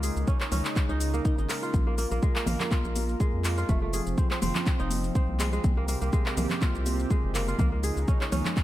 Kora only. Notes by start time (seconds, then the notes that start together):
Already playing: A#3 F4
0.03 G#4
0.28 C#4
0.41 C#4
0.52 C#4
0.89 D#4
1.14 A#3
1.25 D#4
1.38 D#4
1.49 A#4
1.63 F4
1.87 A#3
1.98 A#3
2.11 A#3
2.23 G#3
2.36 A#3
2.47 A#3
2.60 A#3
2.71 F4
3.20 G#3
3.45 A#3
3.58 F4
3.69 A3
3.82 A3
3.93 G#4
4.18 C4
4.31 C4
4.42 C4
4.80 D#4
5.15 C4
5.40 G#3
5.53 G#3
5.77 A#3
5.88 A#3
6.02 A#3
6.13 G#3
6.26 A#3
6.37 A#3
6.50 A#3
6.62 F4
7.11 G#3
7.35 A#3
7.48 F4
7.59 A#3
7.72 A#3
7.83 G#4
8.08 C#4
8.21 C#4
8.32 C#4